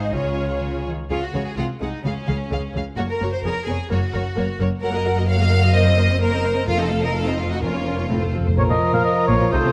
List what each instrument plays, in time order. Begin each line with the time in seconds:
Already playing: double bass section G#1, cello section G#2, viola section D#4, violin section G#4 C5
0.03 flute section D#5
0.13 double bass section C#2, cello section C#3, viola section F4, violin section G#4 C#5, flute section C#5
0.63 cello section C#3
0.87 cello section D#3
1.10 double bass section C#2, cello section C#3, viola section C#4 G#4, violin section F4 C#5
1.23 violin section F#4
1.34 double bass section C#2, cello section C#3, viola section C#4 G#4, violin section C#5
1.46 violin section G#4
1.56 double bass section C2, cello section C3, viola section G#3 G#4, violin section F4 F#5
1.81 double bass section C2, cello section C3, viola section G#3 G#4, violin section D#4 F#5
2.04 double bass section C#2, cello section C#3, viola section G#3 G#4, violin section C#4 F5
2.27 double bass section C#2, cello section C#3, viola section G#3 G#4, violin section F5
2.51 double bass section C#2, cello section C#3, viola section G#3 G#4, violin section F5
2.74 double bass section C#2, cello section C#3, viola section G#3 G#4, violin section F5
2.97 double bass section F#1, cello section F#2, viola section A#3 F#4, violin section F#4 C#5
3.09 violin section A#4
3.20 double bass section F#1, cello section F#2, viola section A#3 F#4, violin section C#5
3.32 violin section C5
3.43 double bass section F1, cello section F2, viola section B3 G#4, violin section A#4 C#5
3.66 double bass section F1, cello section F2, viola section B3 G#4, violin section G#4 C#5
3.89 double bass section F#1, cello section F#2, viola section A#3 A#4, violin section F#4 C#5
4.13 double bass section F#1, cello section F#2, viola section A#3 A#4, violin section C#5
4.36 double bass section F#1, cello section F#2, viola section A#3 A#4, violin section C#5
4.60 double bass section F#1, cello section F#2, viola section A#3 A#4, violin section C#5
4.81 double bass section F#1, cello section F#2, viola section F#3 A#4, violin section A#4 F#5
4.94 viola section A#3 F#4, violin section D#5
5.05 viola section F#3 A#4, violin section F#5
5.16 viola section A#3 F#4, violin section D#5
5.27 viola section F#3 A#4, violin section F5 F#5
5.40 viola section A#3 F#4, violin section D#5
5.50 viola section F#3 A#4, violin section F#5
5.62 viola section A#3 F#4, violin section D#5
5.73 viola section A#3 A#4, violin section C5 D#5
5.85 viola section C4 C5, violin section D#5
5.97 viola section A#3 A#4, violin section C5
6.10 viola section C4 C5, violin section D#5
6.21 viola section A#3 A#4, violin section A#4 C5
6.32 viola section C4 C5, violin section D#5
6.43 viola section A#3 A#4, violin section C5
6.55 viola section C4 C5, violin section D#5
6.67 double bass section F1, timpani F2, cello section F2, viola section A3 F4, violin section F4 F5
6.77 viola section C4 D#4, violin section D#5
6.81 violin section A4
6.89 viola section A3 F4, violin section F5
7.02 viola section C4 D#4, violin section A#4 D#5
7.13 viola section A3 F4, violin section A4 F5
7.26 viola section C4 D#4, violin section F4 D#5
7.38 viola section A3 F4, violin section F5
7.49 viola section C4 D#4, violin section F#4 D#5
7.61 timpani F2, viola section C#4 F4, violin section F4 A#4
7.74 viola section A#3 C#4, violin section C#5
7.85 viola section C#4 F4, violin section A#4
7.96 viola section A#3 C#4, violin section C#5
8.08 timpani F2, cello section A2, viola section C4 F4, violin section A4
8.17 timpani F2, violin section C5
8.22 timpani F2, viola section A3 A4
8.31 timpani F2, cello section F2, viola section C4 F4, violin section A4
8.40 timpani F2
8.45 timpani F2, viola section A3 A4, violin section C5
8.57 double bass section A#1, cello section A#2, bassoon F3, french horn section F3 F4, viola section A#3, violin section F4 A#4, clarinet A#4, oboe C#5, flute section A#5
8.70 cello section A#2, viola section F3, oboe D#5
8.93 cello section A#2, viola section A#3, oboe F5
9.05 oboe D#5
9.27 double bass section A#1, cello section A#2, viola section A#3, oboe C#5
9.40 cello section A#2, viola section F3
9.51 double bass section C2, cello section C3, bassoon F3, french horn section A3, viola section D#4, violin section A4, clarinet A4, oboe C5, flute section D#6
9.64 cello section C3, viola section C4